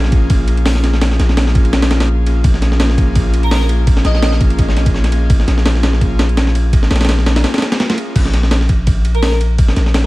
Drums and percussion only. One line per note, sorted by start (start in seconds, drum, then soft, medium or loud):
0.04 snare soft
0.12 kick loud
0.12 ride medium
0.30 kick loud
0.30 ride medium
0.48 ride medium
0.57 ride soft
0.66 snare loud
0.66 open hi-hat medium
0.75 snare soft
0.84 snare soft
0.84 ride medium
0.93 snare soft
1.01 snare loud
1.01 ride medium
1.11 snare soft
1.20 snare medium
1.20 ride medium
1.29 snare soft
1.37 snare loud
1.37 ride medium
1.47 snare medium
1.55 kick medium
1.55 ride medium
1.65 ride soft
1.73 snare loud
1.73 ride medium
1.82 snare loud
1.82 ride medium
1.91 snare loud
1.91 ride medium
2.00 snare loud
2.00 ride medium
2.27 ride medium
2.44 kick loud
2.44 ride medium
2.54 snare soft
2.62 snare medium
2.62 ride medium
2.72 snare soft
2.80 snare loud
2.80 ride medium
2.90 snare medium
2.98 kick loud
2.98 ride medium
3.15 kick loud
3.15 ride medium
3.34 ride medium
3.43 ride soft
3.51 snare loud
3.51 open hi-hat medium
3.61 snare soft
3.69 ride medium
3.87 kick loud
3.87 ride medium
3.97 snare medium
4.05 snare medium
4.05 ride medium
4.15 snare soft
4.23 snare loud
4.23 ride medium
4.32 snare medium
4.41 kick medium
4.41 ride medium
4.50 ride soft
4.58 kick loud
4.58 ride medium
4.69 snare soft
4.77 snare soft
4.77 ride medium
4.86 kick medium
4.86 ride medium
4.94 snare soft
5.04 snare soft
5.04 ride medium
5.12 ride medium
5.30 kick loud
5.30 ride medium
5.40 snare soft
5.48 snare medium
5.48 ride medium
5.58 snare soft
5.66 snare loud
5.66 ride medium
5.75 snare medium
5.83 snare loud
5.83 ride medium
5.93 snare soft
6.01 kick medium
6.01 ride medium
6.19 snare loud
6.19 ride medium
6.29 ride soft
6.37 snare loud
6.37 ride medium
6.47 snare soft
6.55 ride medium
6.73 kick loud
6.73 ride medium
6.83 snare medium
6.91 snare medium
6.91 ride medium
6.96 snare medium
6.96 ride medium
7.01 snare medium
7.01 ride medium
7.05 snare medium
7.05 ride medium
7.09 snare loud
7.09 ride medium
7.18 snare medium
7.26 snare loud
7.26 ride medium
7.36 snare loud
7.36 ride medium
7.44 snare loud
7.44 ride medium
7.54 snare medium
7.54 ride medium
7.58 snare medium
7.58 ride medium
7.62 snare loud
7.62 ride medium
7.72 snare loud
7.72 ride medium
7.80 snare loud
7.80 ride medium
7.90 snare loud
7.90 ride medium
7.98 ride medium
8.16 kick loud
8.16 crash medium
8.16 ride medium
8.25 snare soft
8.34 snare medium
8.34 ride medium
8.43 snare medium
8.51 snare loud
8.51 ride medium
8.61 snare soft
8.69 kick medium
8.69 ride medium
8.87 kick loud
8.87 ride medium
9.05 ride medium
9.15 ride soft
9.23 snare loud
9.23 open hi-hat medium
9.32 snare soft
9.41 ride medium
9.58 kick loud
9.58 ride medium
9.68 snare medium
9.76 snare medium
9.76 ride medium
9.86 snare soft
9.94 snare loud
9.94 ride medium